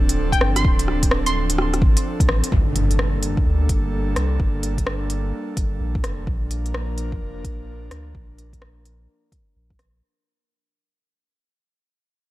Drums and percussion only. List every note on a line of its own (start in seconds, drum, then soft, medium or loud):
0.09 closed hi-hat medium
0.33 kick medium
0.33 closed hi-hat soft
0.41 cross-stick medium
0.56 cross-stick medium
0.56 closed hi-hat medium
0.65 kick loud
0.79 closed hi-hat soft
0.88 cross-stick soft
1.03 kick medium
1.03 closed hi-hat medium
1.11 cross-stick loud
1.26 closed hi-hat soft
1.50 closed hi-hat medium
1.58 cross-stick medium
1.74 cross-stick soft
1.74 closed hi-hat soft
1.82 kick loud
1.97 closed hi-hat medium
2.20 kick loud
2.20 closed hi-hat soft
2.29 cross-stick loud
2.44 closed hi-hat medium
2.52 kick loud
2.76 closed hi-hat medium
2.91 closed hi-hat soft
2.99 cross-stick loud
3.23 closed hi-hat medium
3.37 kick loud
3.69 kick loud
3.69 closed hi-hat medium
4.16 cross-stick loud
4.16 closed hi-hat medium
4.40 kick loud
4.63 closed hi-hat medium
4.78 kick medium
4.78 closed hi-hat soft
4.87 cross-stick loud
5.10 closed hi-hat medium
5.57 kick loud
5.57 closed hi-hat medium
5.95 kick loud
6.04 cross-stick loud
6.04 closed hi-hat medium
6.27 kick loud
6.51 closed hi-hat medium
6.66 closed hi-hat soft
6.74 cross-stick loud
6.98 closed hi-hat medium
7.12 kick loud
7.44 kick loud
7.44 closed hi-hat medium
7.91 cross-stick loud
7.91 closed hi-hat soft
8.15 kick loud
8.38 closed hi-hat soft
8.53 kick medium
8.53 closed hi-hat soft
8.62 cross-stick loud
8.85 closed hi-hat medium
9.32 kick loud
9.32 closed hi-hat medium
9.70 kick loud
9.79 cross-stick medium
9.79 closed hi-hat soft